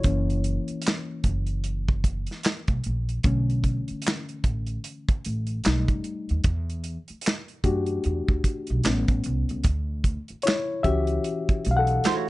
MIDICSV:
0, 0, Header, 1, 6, 480
1, 0, Start_track
1, 0, Tempo, 800000
1, 26, Time_signature, 4, 2, 24, 8
1, 7376, End_track
2, 0, Start_track
2, 0, Title_t, "Hollow-body jazz guitar"
2, 0, Program_c, 0, 26
2, 7229, Note_on_c, 0, 57, 80
2, 7233, Note_on_c, 0, 64, 78
2, 7238, Note_on_c, 0, 66, 80
2, 7239, Note_on_c, 0, 73, 90
2, 7374, Note_off_c, 0, 57, 0
2, 7376, Note_off_c, 0, 64, 0
2, 7376, Note_off_c, 0, 66, 0
2, 7376, Note_off_c, 0, 73, 0
2, 7376, End_track
3, 0, Start_track
3, 0, Title_t, "Reed electric piano"
3, 0, Program_c, 1, 4
3, 0, Control_c, 1, 64, 127
3, 0, Note_on_c, 1, 64, 63
3, 0, Note_on_c, 1, 73, 86
3, 27, Note_on_c, 1, 52, 52
3, 30, Note_on_c, 1, 58, 45
3, 32, Control_c, 1, 64, 0
3, 34, Note_on_c, 1, 61, 53
3, 143, Control_c, 1, 64, 127
3, 720, Note_off_c, 1, 73, 0
3, 723, Note_off_c, 1, 52, 0
3, 724, Note_off_c, 1, 58, 0
3, 726, Note_off_c, 1, 61, 0
3, 726, Note_off_c, 1, 64, 0
3, 1947, Note_on_c, 1, 50, 53
3, 1952, Note_on_c, 1, 57, 45
3, 1954, Control_c, 1, 64, 0
3, 1956, Note_on_c, 1, 61, 53
3, 2058, Control_c, 1, 64, 127
3, 2286, Note_off_c, 1, 50, 0
3, 2288, Note_off_c, 1, 57, 0
3, 2290, Note_off_c, 1, 61, 0
3, 3388, Note_on_c, 1, 55, 53
3, 3391, Note_on_c, 1, 57, 44
3, 3394, Control_c, 1, 64, 0
3, 3394, Note_on_c, 1, 63, 50
3, 3484, Control_c, 1, 64, 127
3, 3843, Note_off_c, 1, 55, 0
3, 3844, Note_off_c, 1, 57, 0
3, 3846, Note_off_c, 1, 63, 0
3, 3874, Control_c, 1, 64, 0
3, 3985, Control_c, 1, 64, 127
3, 4584, Note_on_c, 1, 67, 52
3, 4586, Note_on_c, 1, 57, 45
3, 4588, Note_on_c, 1, 62, 48
3, 4592, Note_on_c, 1, 66, 56
3, 5281, Note_off_c, 1, 67, 0
3, 5282, Note_off_c, 1, 57, 0
3, 5283, Note_off_c, 1, 62, 0
3, 5285, Note_off_c, 1, 66, 0
3, 5305, Note_on_c, 1, 55, 46
3, 5308, Note_on_c, 1, 59, 47
3, 5312, Note_on_c, 1, 61, 55
3, 5313, Control_c, 1, 64, 0
3, 5425, Control_c, 1, 64, 127
3, 5644, Note_off_c, 1, 55, 0
3, 5646, Note_off_c, 1, 59, 0
3, 5648, Note_off_c, 1, 61, 0
3, 5793, Control_c, 1, 64, 0
3, 5915, Control_c, 1, 64, 127
3, 6261, Note_on_c, 1, 73, 81
3, 6273, Note_on_c, 1, 64, 60
3, 6370, Note_off_c, 1, 73, 0
3, 6380, Note_off_c, 1, 64, 0
3, 6500, Note_on_c, 1, 76, 93
3, 6505, Note_on_c, 1, 52, 52
3, 6507, Note_on_c, 1, 66, 50
3, 6510, Note_on_c, 1, 61, 55
3, 6511, Note_on_c, 1, 67, 68
3, 6844, Note_off_c, 1, 52, 0
3, 6845, Note_off_c, 1, 66, 0
3, 6847, Note_off_c, 1, 61, 0
3, 7005, Note_off_c, 1, 76, 0
3, 7011, Note_off_c, 1, 67, 0
3, 7026, Note_on_c, 1, 77, 63
3, 7060, Note_on_c, 1, 78, 92
3, 7063, Note_off_c, 1, 77, 0
3, 7074, Note_on_c, 1, 69, 69
3, 7376, Note_off_c, 1, 69, 0
3, 7376, Note_off_c, 1, 78, 0
3, 7376, End_track
4, 0, Start_track
4, 0, Title_t, "Upright bass"
4, 0, Program_c, 2, 32
4, 31, Note_on_c, 2, 30, 100
4, 335, Note_off_c, 2, 30, 0
4, 748, Note_on_c, 2, 30, 86
4, 1349, Note_off_c, 2, 30, 0
4, 1613, Note_on_c, 2, 35, 77
4, 1687, Note_off_c, 2, 35, 0
4, 1717, Note_on_c, 2, 34, 76
4, 1903, Note_off_c, 2, 34, 0
4, 1950, Note_on_c, 2, 35, 95
4, 2254, Note_off_c, 2, 35, 0
4, 2669, Note_on_c, 2, 33, 67
4, 2858, Note_off_c, 2, 33, 0
4, 3156, Note_on_c, 2, 33, 75
4, 3342, Note_off_c, 2, 33, 0
4, 3397, Note_on_c, 2, 35, 92
4, 3508, Note_off_c, 2, 35, 0
4, 3535, Note_on_c, 2, 30, 75
4, 3608, Note_off_c, 2, 30, 0
4, 3784, Note_on_c, 2, 39, 79
4, 3853, Note_off_c, 2, 39, 0
4, 3870, Note_on_c, 2, 40, 99
4, 4174, Note_off_c, 2, 40, 0
4, 4588, Note_on_c, 2, 42, 85
4, 4777, Note_off_c, 2, 42, 0
4, 4835, Note_on_c, 2, 40, 84
4, 4947, Note_off_c, 2, 40, 0
4, 4977, Note_on_c, 2, 38, 77
4, 5050, Note_off_c, 2, 38, 0
4, 5221, Note_on_c, 2, 35, 91
4, 5292, Note_off_c, 2, 35, 0
4, 5315, Note_on_c, 2, 33, 87
4, 5427, Note_off_c, 2, 33, 0
4, 5456, Note_on_c, 2, 33, 76
4, 5529, Note_off_c, 2, 33, 0
4, 5556, Note_on_c, 2, 36, 87
4, 5667, Note_off_c, 2, 36, 0
4, 5702, Note_on_c, 2, 37, 76
4, 5772, Note_off_c, 2, 37, 0
4, 5793, Note_on_c, 2, 38, 98
4, 6096, Note_off_c, 2, 38, 0
4, 6511, Note_on_c, 2, 37, 83
4, 6699, Note_off_c, 2, 37, 0
4, 6998, Note_on_c, 2, 35, 96
4, 7183, Note_off_c, 2, 35, 0
4, 7376, End_track
5, 0, Start_track
5, 0, Title_t, "Muted upright bass strokes"
5, 421, Note_on_c, 9, 29, 45
5, 481, Note_off_c, 9, 29, 0
5, 2343, Note_on_c, 9, 29, 44
5, 2403, Note_off_c, 9, 29, 0
5, 4262, Note_on_c, 9, 29, 44
5, 4322, Note_off_c, 9, 29, 0
5, 6182, Note_on_c, 9, 29, 48
5, 6242, Note_off_c, 9, 29, 0
5, 7239, Note_on_c, 9, 29, 41
5, 7299, Note_off_c, 9, 29, 0
5, 7376, End_track
6, 0, Start_track
6, 0, Title_t, "Drums"
6, 21, Note_on_c, 9, 42, 71
6, 26, Note_on_c, 9, 36, 100
6, 81, Note_off_c, 9, 42, 0
6, 86, Note_off_c, 9, 36, 0
6, 179, Note_on_c, 9, 42, 35
6, 239, Note_off_c, 9, 42, 0
6, 264, Note_on_c, 9, 42, 59
6, 324, Note_off_c, 9, 42, 0
6, 407, Note_on_c, 9, 42, 42
6, 467, Note_off_c, 9, 42, 0
6, 490, Note_on_c, 9, 42, 83
6, 523, Note_on_c, 9, 39, 85
6, 527, Note_on_c, 9, 38, 107
6, 550, Note_off_c, 9, 42, 0
6, 583, Note_off_c, 9, 39, 0
6, 587, Note_off_c, 9, 38, 0
6, 742, Note_on_c, 9, 42, 55
6, 743, Note_on_c, 9, 36, 76
6, 802, Note_off_c, 9, 42, 0
6, 803, Note_off_c, 9, 36, 0
6, 879, Note_on_c, 9, 42, 41
6, 939, Note_off_c, 9, 42, 0
6, 982, Note_on_c, 9, 42, 64
6, 1042, Note_off_c, 9, 42, 0
6, 1131, Note_on_c, 9, 36, 90
6, 1191, Note_off_c, 9, 36, 0
6, 1224, Note_on_c, 9, 36, 80
6, 1225, Note_on_c, 9, 42, 67
6, 1284, Note_off_c, 9, 36, 0
6, 1285, Note_off_c, 9, 42, 0
6, 1359, Note_on_c, 9, 42, 41
6, 1387, Note_on_c, 9, 38, 32
6, 1419, Note_off_c, 9, 42, 0
6, 1447, Note_off_c, 9, 38, 0
6, 1460, Note_on_c, 9, 42, 71
6, 1472, Note_on_c, 9, 39, 75
6, 1476, Note_on_c, 9, 38, 105
6, 1520, Note_off_c, 9, 42, 0
6, 1532, Note_off_c, 9, 39, 0
6, 1536, Note_off_c, 9, 38, 0
6, 1605, Note_on_c, 9, 42, 31
6, 1609, Note_on_c, 9, 36, 84
6, 1665, Note_off_c, 9, 42, 0
6, 1669, Note_off_c, 9, 36, 0
6, 1702, Note_on_c, 9, 42, 58
6, 1762, Note_off_c, 9, 42, 0
6, 1853, Note_on_c, 9, 42, 38
6, 1913, Note_off_c, 9, 42, 0
6, 1941, Note_on_c, 9, 42, 71
6, 1946, Note_on_c, 9, 36, 113
6, 2001, Note_off_c, 9, 42, 0
6, 2006, Note_off_c, 9, 36, 0
6, 2098, Note_on_c, 9, 42, 35
6, 2158, Note_off_c, 9, 42, 0
6, 2182, Note_on_c, 9, 36, 72
6, 2182, Note_on_c, 9, 42, 58
6, 2242, Note_off_c, 9, 36, 0
6, 2243, Note_off_c, 9, 42, 0
6, 2327, Note_on_c, 9, 42, 38
6, 2387, Note_off_c, 9, 42, 0
6, 2410, Note_on_c, 9, 42, 77
6, 2443, Note_on_c, 9, 39, 89
6, 2447, Note_on_c, 9, 38, 106
6, 2470, Note_off_c, 9, 42, 0
6, 2503, Note_off_c, 9, 39, 0
6, 2507, Note_off_c, 9, 38, 0
6, 2572, Note_on_c, 9, 42, 29
6, 2632, Note_off_c, 9, 42, 0
6, 2663, Note_on_c, 9, 36, 86
6, 2663, Note_on_c, 9, 42, 53
6, 2723, Note_off_c, 9, 36, 0
6, 2723, Note_off_c, 9, 42, 0
6, 2799, Note_on_c, 9, 42, 38
6, 2859, Note_off_c, 9, 42, 0
6, 2904, Note_on_c, 9, 42, 68
6, 2964, Note_off_c, 9, 42, 0
6, 3051, Note_on_c, 9, 36, 97
6, 3051, Note_on_c, 9, 42, 33
6, 3111, Note_off_c, 9, 36, 0
6, 3111, Note_off_c, 9, 42, 0
6, 3147, Note_on_c, 9, 42, 65
6, 3207, Note_off_c, 9, 42, 0
6, 3280, Note_on_c, 9, 42, 42
6, 3340, Note_off_c, 9, 42, 0
6, 3382, Note_on_c, 9, 42, 69
6, 3394, Note_on_c, 9, 39, 74
6, 3398, Note_on_c, 9, 38, 98
6, 3442, Note_off_c, 9, 42, 0
6, 3454, Note_off_c, 9, 39, 0
6, 3458, Note_off_c, 9, 38, 0
6, 3530, Note_on_c, 9, 36, 83
6, 3530, Note_on_c, 9, 42, 32
6, 3590, Note_off_c, 9, 36, 0
6, 3590, Note_off_c, 9, 42, 0
6, 3624, Note_on_c, 9, 42, 53
6, 3684, Note_off_c, 9, 42, 0
6, 3774, Note_on_c, 9, 42, 40
6, 3834, Note_off_c, 9, 42, 0
6, 3862, Note_on_c, 9, 42, 71
6, 3866, Note_on_c, 9, 36, 113
6, 3922, Note_off_c, 9, 42, 0
6, 3926, Note_off_c, 9, 36, 0
6, 4018, Note_on_c, 9, 42, 36
6, 4078, Note_off_c, 9, 42, 0
6, 4102, Note_on_c, 9, 42, 62
6, 4162, Note_off_c, 9, 42, 0
6, 4247, Note_on_c, 9, 42, 37
6, 4307, Note_off_c, 9, 42, 0
6, 4328, Note_on_c, 9, 42, 86
6, 4361, Note_on_c, 9, 39, 88
6, 4365, Note_on_c, 9, 38, 109
6, 4388, Note_off_c, 9, 42, 0
6, 4421, Note_off_c, 9, 39, 0
6, 4425, Note_off_c, 9, 38, 0
6, 4490, Note_on_c, 9, 42, 32
6, 4550, Note_off_c, 9, 42, 0
6, 4582, Note_on_c, 9, 42, 57
6, 4583, Note_on_c, 9, 36, 84
6, 4642, Note_off_c, 9, 42, 0
6, 4643, Note_off_c, 9, 36, 0
6, 4719, Note_on_c, 9, 42, 39
6, 4779, Note_off_c, 9, 42, 0
6, 4822, Note_on_c, 9, 42, 62
6, 4882, Note_off_c, 9, 42, 0
6, 4971, Note_on_c, 9, 36, 87
6, 5031, Note_off_c, 9, 36, 0
6, 5064, Note_on_c, 9, 36, 81
6, 5067, Note_on_c, 9, 42, 68
6, 5124, Note_off_c, 9, 36, 0
6, 5127, Note_off_c, 9, 42, 0
6, 5201, Note_on_c, 9, 42, 40
6, 5261, Note_off_c, 9, 42, 0
6, 5301, Note_on_c, 9, 42, 69
6, 5313, Note_on_c, 9, 39, 76
6, 5317, Note_on_c, 9, 38, 93
6, 5361, Note_off_c, 9, 42, 0
6, 5373, Note_off_c, 9, 39, 0
6, 5377, Note_off_c, 9, 38, 0
6, 5448, Note_on_c, 9, 42, 33
6, 5450, Note_on_c, 9, 36, 92
6, 5508, Note_off_c, 9, 42, 0
6, 5510, Note_off_c, 9, 36, 0
6, 5542, Note_on_c, 9, 42, 54
6, 5602, Note_off_c, 9, 42, 0
6, 5694, Note_on_c, 9, 42, 38
6, 5754, Note_off_c, 9, 42, 0
6, 5781, Note_on_c, 9, 42, 75
6, 5787, Note_on_c, 9, 36, 110
6, 5841, Note_off_c, 9, 42, 0
6, 5847, Note_off_c, 9, 36, 0
6, 6024, Note_on_c, 9, 36, 76
6, 6026, Note_on_c, 9, 42, 60
6, 6084, Note_off_c, 9, 36, 0
6, 6086, Note_off_c, 9, 42, 0
6, 6169, Note_on_c, 9, 42, 41
6, 6229, Note_off_c, 9, 42, 0
6, 6253, Note_on_c, 9, 42, 81
6, 6285, Note_on_c, 9, 39, 88
6, 6290, Note_on_c, 9, 38, 112
6, 6313, Note_off_c, 9, 42, 0
6, 6345, Note_off_c, 9, 39, 0
6, 6350, Note_off_c, 9, 38, 0
6, 6506, Note_on_c, 9, 36, 85
6, 6506, Note_on_c, 9, 42, 52
6, 6566, Note_off_c, 9, 36, 0
6, 6566, Note_off_c, 9, 42, 0
6, 6643, Note_on_c, 9, 42, 41
6, 6703, Note_off_c, 9, 42, 0
6, 6746, Note_on_c, 9, 42, 67
6, 6806, Note_off_c, 9, 42, 0
6, 6893, Note_on_c, 9, 36, 94
6, 6893, Note_on_c, 9, 42, 32
6, 6953, Note_off_c, 9, 36, 0
6, 6953, Note_off_c, 9, 42, 0
6, 6988, Note_on_c, 9, 42, 66
6, 7048, Note_off_c, 9, 42, 0
6, 7122, Note_on_c, 9, 42, 44
6, 7182, Note_off_c, 9, 42, 0
6, 7223, Note_on_c, 9, 42, 77
6, 7234, Note_on_c, 9, 39, 77
6, 7238, Note_on_c, 9, 38, 92
6, 7283, Note_off_c, 9, 42, 0
6, 7294, Note_off_c, 9, 39, 0
6, 7298, Note_off_c, 9, 38, 0
6, 7376, End_track
0, 0, End_of_file